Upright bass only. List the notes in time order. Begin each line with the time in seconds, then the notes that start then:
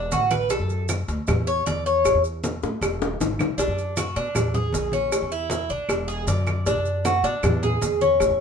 Already playing: E1
0.13 A1
0.50 B1
0.60 F#2
1.08 D2
1.28 E2
1.67 E2
2.05 A1
2.14 E2
2.63 A2
2.81 E1
3.21 G#1
3.39 B1
3.58 B1
3.68 F#2
4.16 B2
4.35 E2
4.74 A#1
5.13 A1
5.22 E2
5.70 B1
5.89 E1
6.27 F#2
6.66 B1
6.75 F#2
7.23 B2
7.43 E2
7.83 E2
8.20 A1
8.30 E2